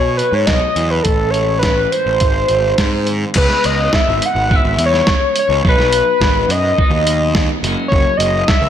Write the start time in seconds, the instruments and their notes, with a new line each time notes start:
Already playing: clean electric guitar B2 F#3 B3 F#4 G#4, picked electric bass B2, analog synth lead C#5
0.17 clean electric guitar B3, analog synth lead B4, closed hi-hat
0.32 picked electric bass G#2, analog synth lead C#5
0.46 picked electric bass B1, clean electric guitar F#4, analog synth lead D#5, kick, snare, closed hi-hat
0.76 picked electric bass E2, clean electric guitar F#3, closed hi-hat
0.90 analog synth lead B4
1.03 picked electric bass A1, analog synth lead A4, kick, closed hi-hat
1.30 clean electric guitar G#3, analog synth lead C#5, closed hi-hat
1.59 analog synth lead B4, snare, closed hi-hat
1.63 clean electric guitar E3, kick
1.91 clean electric guitar C#4, analog synth lead C5, closed hi-hat
2.06 picked electric bass A1
2.20 picked electric bass G#1, kick, closed hi-hat
2.48 picked electric bass G#1, clean electric guitar F#3, closed hi-hat
2.78 picked electric bass G#2, clean electric guitar C4, kick, snare, closed hi-hat
3.07 clean electric guitar D#3, closed hi-hat
3.34 picked electric bass C#2, clean electric guitar C#3 G#3 B3, analog synth lead B4, kick, crash
3.38 clean electric guitar E4
3.50 snare
3.64 picked electric bass C#2, analog synth lead D#5, closed hi-hat
3.93 analog synth lead E5, kick, snare
4.08 picked electric bass G#1
4.22 analog synth lead F#5, closed hi-hat
4.35 picked electric bass G#1
4.49 clean electric guitar C#3 G#3 B3 E4, kick
4.55 analog synth lead E5
4.64 picked electric bass G#1
4.77 picked electric bass E2, closed hi-hat
4.86 analog synth lead C#5
4.94 snare
5.07 kick, snare
5.36 analog synth lead C#5, closed hi-hat
5.49 picked electric bass C#2
5.65 picked electric bass B1, clean electric guitar B2 F#3 B3 D#4, kick
5.69 analog synth lead B4
5.78 picked electric bass B1, snare
5.93 analog synth lead B4, closed hi-hat
6.20 picked electric bass G#1, kick, snare
6.48 picked electric bass F#2, analog synth lead D#5, closed hi-hat
6.77 clean electric guitar B2 F#3 B3 D#4, kick
6.90 picked electric bass D#2
7.07 closed hi-hat
7.35 kick, snare
7.63 picked electric bass F#1, clean electric guitar F#2 C#3 F#3, closed hi-hat
7.67 clean electric guitar A#3 C#4
7.88 analog synth lead C#5, kick
7.92 picked electric bass F#1
8.17 picked electric bass F#1, analog synth lead D#5, closed hi-hat
8.48 analog synth lead E5, kick, snare
8.61 picked electric bass C#2